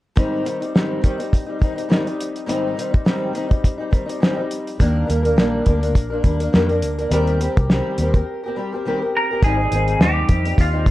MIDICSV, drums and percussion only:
0, 0, Header, 1, 2, 480
1, 0, Start_track
1, 0, Tempo, 577478
1, 148, Time_signature, 4, 2, 24, 8
1, 9066, End_track
2, 0, Start_track
2, 0, Title_t, "Drums"
2, 142, Note_on_c, 9, 42, 73
2, 143, Note_on_c, 9, 36, 87
2, 225, Note_off_c, 9, 42, 0
2, 226, Note_off_c, 9, 36, 0
2, 385, Note_on_c, 9, 42, 70
2, 468, Note_off_c, 9, 42, 0
2, 517, Note_on_c, 9, 42, 38
2, 600, Note_off_c, 9, 42, 0
2, 629, Note_on_c, 9, 38, 89
2, 712, Note_off_c, 9, 38, 0
2, 862, Note_on_c, 9, 42, 55
2, 864, Note_on_c, 9, 36, 60
2, 945, Note_off_c, 9, 42, 0
2, 947, Note_off_c, 9, 36, 0
2, 997, Note_on_c, 9, 42, 45
2, 1080, Note_off_c, 9, 42, 0
2, 1106, Note_on_c, 9, 36, 79
2, 1111, Note_on_c, 9, 42, 86
2, 1189, Note_off_c, 9, 36, 0
2, 1194, Note_off_c, 9, 42, 0
2, 1343, Note_on_c, 9, 36, 81
2, 1347, Note_on_c, 9, 42, 49
2, 1427, Note_off_c, 9, 36, 0
2, 1430, Note_off_c, 9, 42, 0
2, 1481, Note_on_c, 9, 42, 47
2, 1564, Note_off_c, 9, 42, 0
2, 1592, Note_on_c, 9, 38, 83
2, 1675, Note_off_c, 9, 38, 0
2, 1722, Note_on_c, 9, 42, 30
2, 1805, Note_off_c, 9, 42, 0
2, 1833, Note_on_c, 9, 42, 66
2, 1916, Note_off_c, 9, 42, 0
2, 1960, Note_on_c, 9, 42, 37
2, 2043, Note_off_c, 9, 42, 0
2, 2072, Note_on_c, 9, 42, 79
2, 2155, Note_off_c, 9, 42, 0
2, 2318, Note_on_c, 9, 42, 63
2, 2401, Note_off_c, 9, 42, 0
2, 2444, Note_on_c, 9, 42, 37
2, 2445, Note_on_c, 9, 36, 81
2, 2527, Note_off_c, 9, 42, 0
2, 2529, Note_off_c, 9, 36, 0
2, 2546, Note_on_c, 9, 38, 101
2, 2629, Note_off_c, 9, 38, 0
2, 2784, Note_on_c, 9, 42, 55
2, 2867, Note_off_c, 9, 42, 0
2, 2918, Note_on_c, 9, 42, 47
2, 2919, Note_on_c, 9, 36, 79
2, 3001, Note_off_c, 9, 42, 0
2, 3002, Note_off_c, 9, 36, 0
2, 3027, Note_on_c, 9, 36, 80
2, 3031, Note_on_c, 9, 42, 82
2, 3110, Note_off_c, 9, 36, 0
2, 3114, Note_off_c, 9, 42, 0
2, 3264, Note_on_c, 9, 36, 70
2, 3269, Note_on_c, 9, 42, 55
2, 3347, Note_off_c, 9, 36, 0
2, 3352, Note_off_c, 9, 42, 0
2, 3403, Note_on_c, 9, 42, 54
2, 3486, Note_off_c, 9, 42, 0
2, 3516, Note_on_c, 9, 38, 98
2, 3599, Note_off_c, 9, 38, 0
2, 3748, Note_on_c, 9, 42, 64
2, 3832, Note_off_c, 9, 42, 0
2, 3885, Note_on_c, 9, 42, 36
2, 3968, Note_off_c, 9, 42, 0
2, 3990, Note_on_c, 9, 36, 84
2, 3993, Note_on_c, 9, 42, 79
2, 4073, Note_off_c, 9, 36, 0
2, 4076, Note_off_c, 9, 42, 0
2, 4237, Note_on_c, 9, 42, 69
2, 4320, Note_off_c, 9, 42, 0
2, 4365, Note_on_c, 9, 42, 39
2, 4448, Note_off_c, 9, 42, 0
2, 4471, Note_on_c, 9, 38, 94
2, 4554, Note_off_c, 9, 38, 0
2, 4703, Note_on_c, 9, 42, 53
2, 4709, Note_on_c, 9, 36, 68
2, 4786, Note_off_c, 9, 42, 0
2, 4793, Note_off_c, 9, 36, 0
2, 4845, Note_on_c, 9, 42, 53
2, 4929, Note_off_c, 9, 42, 0
2, 4948, Note_on_c, 9, 36, 78
2, 4949, Note_on_c, 9, 42, 85
2, 5031, Note_off_c, 9, 36, 0
2, 5032, Note_off_c, 9, 42, 0
2, 5186, Note_on_c, 9, 42, 52
2, 5187, Note_on_c, 9, 36, 71
2, 5269, Note_off_c, 9, 42, 0
2, 5270, Note_off_c, 9, 36, 0
2, 5322, Note_on_c, 9, 42, 50
2, 5405, Note_off_c, 9, 42, 0
2, 5434, Note_on_c, 9, 38, 94
2, 5517, Note_off_c, 9, 38, 0
2, 5564, Note_on_c, 9, 42, 30
2, 5647, Note_off_c, 9, 42, 0
2, 5672, Note_on_c, 9, 42, 68
2, 5755, Note_off_c, 9, 42, 0
2, 5807, Note_on_c, 9, 42, 34
2, 5890, Note_off_c, 9, 42, 0
2, 5914, Note_on_c, 9, 42, 80
2, 5997, Note_off_c, 9, 42, 0
2, 6046, Note_on_c, 9, 42, 33
2, 6129, Note_off_c, 9, 42, 0
2, 6157, Note_on_c, 9, 42, 67
2, 6241, Note_off_c, 9, 42, 0
2, 6293, Note_on_c, 9, 42, 39
2, 6294, Note_on_c, 9, 36, 83
2, 6376, Note_off_c, 9, 42, 0
2, 6377, Note_off_c, 9, 36, 0
2, 6399, Note_on_c, 9, 38, 92
2, 6482, Note_off_c, 9, 38, 0
2, 6632, Note_on_c, 9, 42, 61
2, 6715, Note_off_c, 9, 42, 0
2, 6766, Note_on_c, 9, 36, 74
2, 6767, Note_on_c, 9, 42, 51
2, 6849, Note_off_c, 9, 36, 0
2, 6850, Note_off_c, 9, 42, 0
2, 7835, Note_on_c, 9, 36, 100
2, 7835, Note_on_c, 9, 42, 81
2, 7918, Note_off_c, 9, 36, 0
2, 7918, Note_off_c, 9, 42, 0
2, 8078, Note_on_c, 9, 42, 68
2, 8161, Note_off_c, 9, 42, 0
2, 8210, Note_on_c, 9, 42, 41
2, 8293, Note_off_c, 9, 42, 0
2, 8318, Note_on_c, 9, 38, 98
2, 8402, Note_off_c, 9, 38, 0
2, 8550, Note_on_c, 9, 42, 63
2, 8555, Note_on_c, 9, 36, 78
2, 8633, Note_off_c, 9, 42, 0
2, 8638, Note_off_c, 9, 36, 0
2, 8690, Note_on_c, 9, 42, 54
2, 8773, Note_off_c, 9, 42, 0
2, 8794, Note_on_c, 9, 36, 87
2, 8798, Note_on_c, 9, 42, 88
2, 8877, Note_off_c, 9, 36, 0
2, 8882, Note_off_c, 9, 42, 0
2, 9029, Note_on_c, 9, 36, 84
2, 9032, Note_on_c, 9, 42, 54
2, 9066, Note_off_c, 9, 36, 0
2, 9066, Note_off_c, 9, 42, 0
2, 9066, End_track
0, 0, End_of_file